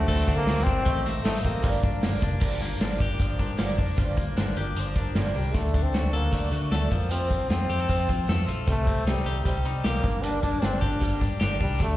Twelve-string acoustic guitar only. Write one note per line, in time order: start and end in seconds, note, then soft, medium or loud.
0.08 0.27 D3 medium
0.08 0.28 A3 medium
0.08 0.27 C4 medium
0.08 0.26 F#4 medium
0.27 0.47 A3 medium
0.27 0.47 C4 medium
0.27 0.46 F#4 medium
0.47 0.66 D3 medium
0.47 0.67 A3 medium
0.47 0.67 C4 medium
0.47 0.66 F#4 medium
0.67 0.85 A3 medium
0.67 0.85 C4 medium
0.67 0.86 F#4 medium
0.86 1.05 A3 medium
0.86 1.05 C4 medium
0.86 1.05 G4 medium
0.86 1.05 A4 medium
0.86 1.04 D#5 medium
1.05 1.23 G4 soft
1.05 1.24 A4 soft
1.05 1.25 D#5 medium
1.24 1.44 C4 medium
1.24 1.44 G4 medium
1.24 1.44 A4 medium
1.24 1.42 D#5 medium
1.44 1.63 G4 soft
1.44 1.63 A4 medium
1.44 1.63 D#5 medium
1.62 1.82 G2 medium
1.62 1.82 D3 medium
1.62 1.83 F3 medium
1.62 1.82 A#3 medium
1.62 1.81 D4 medium
1.82 2.01 F3 soft
1.82 2.02 A#3 medium
1.82 2.02 D4 medium
2.01 2.21 D3 medium
2.01 2.22 F3 medium
2.01 2.21 A#3 medium
2.01 2.19 D4 medium
2.21 2.40 F3 medium
2.21 2.40 A#3 medium
2.21 2.40 D4 medium
2.40 2.60 G2 medium
2.40 2.60 D3 medium
2.40 2.61 F3 medium
2.40 2.60 A#3 medium
2.40 2.59 D4 loud
2.60 2.79 F3 soft
2.60 2.80 A#3 soft
2.60 2.80 D4 medium
2.80 3.00 G2 medium
2.80 3.00 D3 medium
2.80 3.00 F3 medium
2.80 2.99 A#3 medium
2.80 2.98 D4 medium
2.99 3.20 F3 medium
2.99 3.20 A#3 medium
2.99 3.19 D4 medium
3.20 3.39 D3 medium
3.20 3.40 F3 medium
3.20 3.39 A#3 medium
3.20 3.37 D4 medium
3.38 3.58 F3 medium
3.38 3.58 A#3 medium
3.38 3.58 D4 medium
3.57 3.78 G2 medium
3.57 3.78 D3 medium
3.57 3.78 F3 medium
3.57 3.78 A#3 medium
3.57 3.76 D4 medium
3.77 3.97 F3 soft
3.77 3.97 A#3 medium
3.77 3.97 D4 medium
3.96 4.17 G2 loud
3.96 4.17 D3 medium
3.96 4.18 F3 medium
3.96 4.18 A#3 medium
3.96 4.17 D4 loud
4.18 4.36 F3 soft
4.18 4.37 A#3 soft
4.18 4.37 D4 medium
4.37 4.56 G2 medium
4.37 4.57 D3 medium
4.37 4.57 F3 medium
4.37 4.57 A#3 medium
4.37 4.56 D4 medium
4.57 4.77 F3 medium
4.57 4.77 A#3 medium
4.57 4.76 D4 medium
4.77 4.96 D3 medium
4.77 4.97 F3 medium
4.77 4.97 A#3 medium
4.77 4.96 D4 medium
4.97 5.15 F3 soft
4.97 5.15 A#3 medium
4.97 5.16 D4 medium
5.15 5.35 G2 medium
5.15 5.35 D3 medium
5.15 5.35 F3 medium
5.15 5.34 A#3 medium
5.15 5.33 D4 medium
5.34 5.54 F3 soft
5.34 5.55 A#3 medium
5.34 5.54 D4 medium
5.54 5.74 D3 medium
5.54 5.73 F#3 medium
5.54 5.73 A3 medium
5.54 5.71 D4 medium
5.72 5.91 F#3 soft
5.72 5.92 A3 soft
5.72 5.93 D4 soft
5.92 6.12 D3 medium
5.92 6.13 F#3 medium
5.92 6.12 A3 medium
5.92 6.10 D4 medium
6.11 6.30 F#3 soft
6.11 6.31 A3 medium
6.11 6.32 D4 medium
6.31 6.51 D3 medium
6.31 6.51 F#3 medium
6.31 6.50 A3 medium
6.31 6.49 D4 medium
6.50 6.70 F#3 soft
6.50 6.70 A3 medium
6.50 6.71 D4 medium
6.70 6.90 D3 medium
6.70 6.91 F#3 medium
6.70 6.90 A3 medium
6.70 6.90 D4 medium
6.90 7.09 F3 soft
6.90 7.10 A3 medium
6.90 7.10 C4 medium
7.09 7.29 F2 medium
7.09 7.30 C3 medium
7.09 7.29 F3 medium
7.09 7.28 A3 medium
7.09 7.27 C4 medium
7.28 7.48 F3 soft
7.28 7.49 A3 soft
7.28 7.49 C4 soft
7.49 7.69 C3 medium
7.49 7.69 F3 medium
7.49 7.69 A3 medium
7.49 7.67 C4 medium
7.68 7.88 F3 soft
7.68 7.88 A3 medium
7.68 7.89 C4 medium
7.88 8.08 F2 medium
7.88 8.08 C3 medium
7.88 8.09 F3 medium
7.88 8.08 A3 medium
7.88 8.07 C4 medium
8.08 8.27 F3 medium
8.08 8.27 A3 medium
8.08 8.28 C4 medium
8.27 8.47 C3 medium
8.27 8.47 F3 medium
8.27 8.46 A3 medium
8.27 8.45 C4 medium
8.46 8.67 F3 soft
8.46 8.67 A3 medium
8.46 8.66 C4 medium
8.66 8.86 C3 medium
8.66 8.87 G3 medium
8.66 8.86 C4 medium
8.66 8.85 D#4 medium
8.86 9.04 G3 soft
8.86 9.05 C4 medium
8.86 9.06 D#4 soft
9.05 9.25 C3 soft
9.05 9.26 G3 medium
9.05 9.25 C4 medium
9.05 9.24 D#4 medium
9.25 9.44 G3 soft
9.25 9.45 C4 soft
9.25 9.45 D#4 medium
9.45 9.65 C3 medium
9.45 9.65 G3 medium
9.45 9.64 C4 medium
9.45 9.63 D#4 medium
9.64 9.84 G3 soft
9.64 9.85 C4 medium
9.64 9.84 D#4 medium
9.84 10.04 C3 medium
9.84 10.05 G3 medium
9.84 10.04 C4 medium
9.84 10.03 D#4 medium
10.04 10.23 G3 soft
10.04 10.22 A#3 soft
10.04 10.23 D4 medium
10.23 10.43 G2 medium
10.23 10.43 D3 medium
10.23 10.44 G3 medium
10.23 10.43 A#3 medium
10.23 10.42 D4 medium
10.43 10.62 A#3 soft
10.43 10.63 D4 soft
10.62 10.82 D3 medium
10.62 10.82 G3 medium
10.62 10.81 A#3 medium
10.62 10.80 D4 medium
10.81 11.00 G3 soft
10.81 11.00 A#3 soft
10.81 11.01 D4 medium
11.00 11.21 G2 medium
11.00 11.21 D3 medium
11.00 11.21 G3 medium
11.00 11.20 A#3 medium
11.00 11.18 D4 medium
11.20 11.39 G3 soft
11.20 11.40 A#3 soft
11.20 11.40 D4 medium
11.39 11.60 D3 medium
11.39 11.60 G3 medium
11.39 11.59 A#3 medium
11.39 11.58 D4 medium
11.59 11.79 G3 soft
11.59 11.80 A#3 soft
11.59 11.80 D4 medium
11.79 11.97 D3 medium
11.79 11.97 F#3 medium
11.79 11.97 A3 medium
11.79 11.97 D4 medium